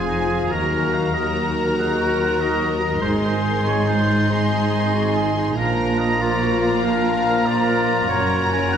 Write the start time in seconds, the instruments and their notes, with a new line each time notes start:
Already playing: double bass section F1, cello section F2, french horn section F3 F4, viola section F4, violin section F4 G#5, trumpet section G#4, oboe G#4
0.08 clarinet D#4
0.31 clarinet F4
0.50 double bass section D#2, cello section D#2, french horn section F#3 D#4, clarinet F#4, viola section F#4, oboe A#4, trumpet section A#4, violin section A#4 A#5
0.94 oboe F5
1.14 french horn section F#3 D#4, clarinet A#4, trumpet section A#4, oboe D#5
1.78 french horn section F#3 D#4, clarinet G#4, trumpet section A#4, oboe F#5
1.99 clarinet F#4
2.21 clarinet F4
2.41 french horn section F#3 D#4, clarinet F#4, trumpet section A#4, oboe D#5
3.01 double bass section G#1, cello section G#2, french horn section G#3 D#4, viola section D#4, trumpet section G#4, clarinet G#4, oboe C5, violin section C6
3.25 oboe C5
3.66 clarinet F4, violin section G#4, oboe C#5
3.87 oboe C5
4.29 french horn section G#3 D#4, clarinet D#4, trumpet section G#4, oboe C5
4.94 clarinet F#4
5.14 clarinet F4
5.37 clarinet D#4
5.56 double bass section A#1, cello section A#2, french horn section F3 F4, viola section A#3, clarinet D4, violin section F4 A#5, trumpet section A#4, oboe A#4
5.99 oboe D#5
6.20 french horn section F3 F4, clarinet F4, trumpet section A#4, oboe D5
6.41 clarinet F#4
6.62 clarinet F4
6.83 french horn section F3 F4, clarinet D4, trumpet section A#4, oboe F5
7.46 french horn section F3 F4, clarinet F4, trumpet section A#4, oboe D5
8.08 double bass section F#1, cello section F#2, french horn section F#3 C#4, viola section C#4, violin section F#4, trumpet section A#4, oboe C#5
8.52 oboe G#5
8.72 french horn section C#4, clarinet D#4, trumpet section A#4, oboe F#5